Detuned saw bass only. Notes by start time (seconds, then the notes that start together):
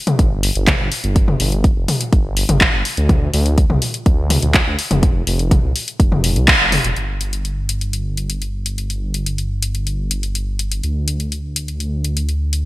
0.19 G1
0.56 G1
0.80 G1
1.04 G1
1.40 G1
1.77 F1
2.13 G1
2.49 G1
2.73 G1
2.97 D2
3.34 D2
3.70 C2
4.06 D2
4.43 D2
4.67 D2
4.91 F1
5.27 F1
5.63 C2
6.00 F1
6.36 C2
6.60 F1
6.84 F1
6.96 G1
10.84 D2